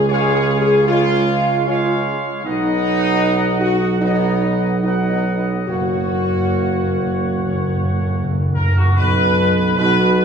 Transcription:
Already playing: C#2
0.09 C#3 G#3 G#4 C#5 F5
0.36 G#4
0.61 G#4
0.88 C#3 G#3 F4 C#5 F5
1.66 C#3 G#3 F4 C#5 F5
2.44 B1 F#3 B3 D#4 D#5 F#5
3.61 F#4
4.01 F#3 B3 D#4 D#5 F#5
4.82 F#3 B3 D#4 D#5 F#5
5.10 D#4
5.39 B3
5.67 F#1 F#2 F#3 A#3 F#4 C#5 F#5
5.75 F#2
5.83 F#2
5.91 F#2
5.99 F#2
6.06 F#2
6.14 F#2
6.21 F#2
6.29 F#2
6.36 F#2
6.45 F#2
6.61 F#2
6.68 F#2
6.75 F#2
6.83 F#2
6.91 F#2
6.99 F#2
7.06 F#2
7.14 F#2
7.23 F#2
7.30 F#2
7.37 F#2
7.46 F#2
7.54 F#2
7.62 F#2
7.69 F#2
7.77 F#2
7.85 F#2
7.92 F#2
8.00 F#2
8.07 F#2
8.15 F#2
8.24 F#2
8.31 F#2
8.40 F#2
8.48 F#2
8.54 F#2 A#4
8.64 F#2
8.72 F#2
8.77 F#2 F#4
8.88 F#2
8.97 B1 B2 B3 B4
9.77 B1 B2 B3 B4

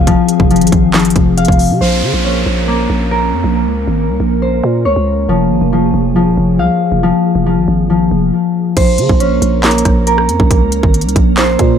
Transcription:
Already playing: F1 F3 C4 G#4 F5
0.07 F3, kick, closed hi-hat
0.29 closed hi-hat
0.40 F1, kick
0.51 F3, closed hi-hat
0.56 closed hi-hat
0.61 G#1, closed hi-hat
0.67 closed hi-hat
0.72 G#1, kick, closed hi-hat
0.94 F3, snare, clap, closed hi-hat
0.99 closed hi-hat
1.05 closed hi-hat
1.10 closed hi-hat
1.16 F1, kick, closed hi-hat
1.38 F5, closed hi-hat
1.45 F1, kick, closed hi-hat
1.52 closed hi-hat
1.59 open hi-hat
1.70 C3
1.81 A#1 A#3 C#4 A#4 C5, downlifter
2.03 C#3
2.14 A#1
2.24 C#4
2.46 A#1
2.68 A#3
2.90 A#1
3.11 A#4
3.33 F2
3.44 A#1
3.66 C#2
3.88 G#1
4.09 C2
4.20 A#1
4.42 C5
4.64 A#2
4.85 C#2 C#5
4.96 C#2
5.29 F1 F3 G#4
5.50 G#1
5.61 F1
5.73 F3
5.94 F1
6.16 F3
6.27 D#1
6.38 F1
6.59 C2 F5
6.92 F1
7.03 F3
7.35 F1
7.46 F3
7.57 G#1
7.68 G#1
7.90 F3
8.11 F1
8.77 A#1 A#3 C#4 A#4 C5, kick, closed hi-hat, crash
8.98 C#3, closed hi-hat
9.09 A#1, kick
9.20 C#4, closed hi-hat
9.42 A#1, closed hi-hat
9.63 A#3, snare, clap, closed hi-hat
9.71 closed hi-hat
9.78 closed hi-hat
9.85 A#1, kick, cross-stick, closed hi-hat
10.07 A#4, closed hi-hat
10.18 cross-stick
10.29 F2, closed hi-hat
10.40 A#1, kick
10.51 kick, closed hi-hat
10.62 C#2
10.72 closed hi-hat
10.83 G#1, kick
10.94 closed hi-hat
11.01 C2, closed hi-hat
11.09 closed hi-hat
11.16 A#1, kick, closed hi-hat
11.37 C5, snare, clap, closed hi-hat
11.59 A#2, kick, closed hi-hat

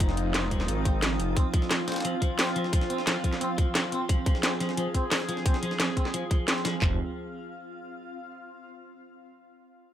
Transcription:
Already playing: F1 F3 C4 D#4 F4 F5 D#6
0.00 F3, kick, closed hi-hat
0.09 snare
0.17 closed hi-hat
0.34 C4, snare, closed hi-hat
0.42 E1
0.51 F3, kick, closed hi-hat
0.60 snare
0.68 G#1, closed hi-hat
0.85 C4, kick, closed hi-hat
1.02 F3, snare, closed hi-hat
1.20 F1, closed hi-hat
1.37 C4 F4, kick, closed hi-hat
1.53 F3 C6, kick, closed hi-hat
1.62 snare
1.71 F3, snare, closed hi-hat
1.88 C4, snare, closed hi-hat
1.92 snare, closed hi-hat
1.96 snare, closed hi-hat
2.00 snare, closed hi-hat
2.05 F3, closed hi-hat
2.22 F3, kick, closed hi-hat
2.39 C4, snare, closed hi-hat, open hi-hat
2.47 snare
2.56 F3, closed hi-hat
2.64 snare
2.73 F3, kick, closed hi-hat
2.81 snare
2.90 C4, closed hi-hat
2.98 snare
3.07 F3, snare, closed hi-hat
3.24 F3, kick, closed hi-hat
3.33 snare
3.41 C4, closed hi-hat
3.58 F3, kick, closed hi-hat
3.75 F3, snare, closed hi-hat
3.92 C4, closed hi-hat
4.09 F3 G#4, kick, closed hi-hat
4.26 F3 F6, kick, closed hi-hat
4.35 snare
4.43 C4, snare, closed hi-hat
4.60 F3, snare, closed hi-hat
4.69 snare
4.77 F3, closed hi-hat
4.94 C4, kick, closed hi-hat
5.12 F3, snare, closed hi-hat, open hi-hat
5.20 snare
5.29 F3, closed hi-hat
5.37 snare
5.46 C4, kick, closed hi-hat
5.54 snare
5.63 F3, closed hi-hat
5.71 snare
5.80 F3, snare, closed hi-hat
5.97 C4, kick, closed hi-hat
6.05 snare
6.14 F3, closed hi-hat
6.31 F3, kick, closed hi-hat
6.48 C4, snare, closed hi-hat
6.56 snare
6.65 F3, snare, closed hi-hat
6.82 F1 F3 C4 F4, kick, clap, floor tom

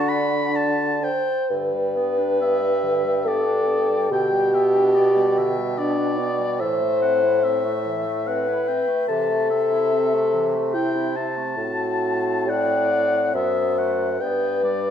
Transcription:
Already playing: D3 D4 F#4 F#5 A5
0.09 B5
0.56 A5
1.03 C5 G5
1.49 G2 D3 B4 G5
1.73 G3
1.96 B3
2.18 D4
2.41 B3 E5
2.62 G3
2.83 D3
3.05 G3
3.25 B3 A4 D5
3.46 D4
3.67 B3
3.89 G3
4.09 B2 D3 G4 G5
4.32 G3
4.53 B3 E5
4.74 D4
4.95 B3 D5
5.16 G3
5.38 D3 E5
5.58 G3
5.78 B3 D4 D5
5.98 D4
6.19 B3 D5
6.39 G3
6.60 A2 E3 C5 E5
6.81 A3
7.02 C4 F#5
7.23 E4
7.43 C4 E5
7.65 A3
7.86 E3
8.06 A3
8.26 C4 B4 F#5
8.48 E4
8.68 C4 G5
8.87 A3
9.08 C3 E3 A4 A5
9.29 A3
9.50 C4 E5
9.72 E4
9.93 C4
10.13 A3
10.34 E3
10.54 A3
10.74 C4 E4 G5
10.96 E4
11.16 C4 A5
11.37 A3
11.57 A2 C4 F#4 A5
12.48 D5 F#5 G5
12.92 F#5
13.34 F#2 B3 C5 E5
13.78 A3 F#5
14.20 G2 B3 B4 D5 G5
14.63 G3 D5

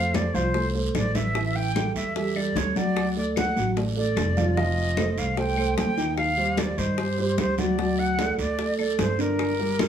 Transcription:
Already playing: F2 A3 A4 C5 F5
0.14 D5, high bongo, high conga, short guiro, claves
0.34 C2 F3 F4 C5 F5, high conga, short guiro
0.54 A3 A4 C5, high bongo, high conga, long guiro
0.74 A3 A4 C5, high bongo, high conga
0.94 A1 D5, high bongo, low bongo, high conga, short guiro, claves
1.15 E3 E4 E5, high bongo, high conga, short guiro
1.35 E3 E4 E5, high bongo, high conga, long guiro
1.56 G5, high conga
1.75 G3 G4 A4, high bongo, high conga, short guiro, claves
1.95 E2 E5, high conga, short guiro
2.16 G3 G4 A4 E5, high bongo, high conga, long guiro
2.36 G3 G4 A4 D5, high conga, claves
2.56 D2 C#5, high bongo, low bongo, high conga, short guiro
2.76 F#3 F#4 D5 F#5, high conga, short guiro
2.96 high bongo, high conga, long guiro, claves
3.16 A3 A4 D5, high bongo, high conga
3.36 F#5, high bongo, high conga, short guiro, claves
3.56 A1 F#3 F#4 F#5, high conga, short guiro
3.77 A3 A4 D5, high bongo, high conga, long guiro
3.97 A3 A4 D5, high bongo, high conga
4.16 F1, high bongo, low bongo, high conga, short guiro, claves
4.37 F3 F4 F5, high bongo, high conga, short guiro
4.57 F3 F4 D#5 F5, high bongo, high conga, long guiro
4.78 high conga
4.97 A3 A4 C5, high bongo, high conga, short guiro, claves
5.17 C2 F5, high conga, short guiro
5.37 A3 A4 C5 G5, high bongo, high conga, long guiro
5.57 A3 A4 C5, high conga, claves
5.77 D#2 G5, high bongo, low bongo, high conga, short guiro
5.97 D#3 D#4 D#5, short guiro
6.18 F5, high bongo, high conga, long guiro, claves
6.37 G3 G4 C5, high bongo, high conga
6.57 D5, high bongo, high conga, short guiro, claves
6.78 G2 D#3 D#4 C5 D#5, high conga, short guiro
6.98 G3 G4 C5, high bongo, high conga, long guiro
7.18 G3 G4 C5, high bongo, high conga
7.38 D2 C5, high bongo, low bongo, high conga, short guiro, claves
7.58 F#3 F#4 D5 F#5, high bongo, high conga, short guiro
7.78 F#3 F#4 F#5, high bongo, high conga, long guiro
7.99 F#5, high conga
8.18 A3 A4 D5, high bongo, high conga, short guiro, claves
8.38 D2 D5, high conga, short guiro
8.59 A3 A4 D5, high bongo, high conga, long guiro
8.79 A3 A4 D5, high conga, claves
8.99 G1 C5, high bongo, low bongo, high conga, short guiro
9.19 D3 D4 A#4 D5, short guiro
9.39 high bongo, high conga, long guiro, claves
9.59 G3 G4 A#4, high bongo, high conga
9.79 high bongo, high conga, short guiro, claves

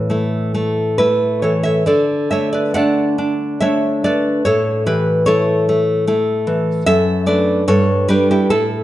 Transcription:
Already playing: A2 E3 A4 C#5
0.10 A3 E4
0.54 A3
0.98 A3 E4 B4
1.42 E3 A4 C#5
1.63 C#5 E5
1.86 D3 A4 D5
2.31 A3 C#5 E5
2.53 B4 D5
2.74 A3 D4 D5 F#5
3.18 D4
3.60 A3 D4 C#5 E5
4.04 A3 B4 D5
4.45 A2 A4 C#5
4.86 E3 G4 B4
5.26 A3 E4 A4 C#5
5.69 A3
6.07 A3 E4
6.47 E3
6.86 F#2 A4 E5
7.26 A3 D4 B4 D5
7.68 G2 A4 C#5
8.08 G3 D4 G4 B4
8.31 E4 G4
8.50 A2 E4 A4

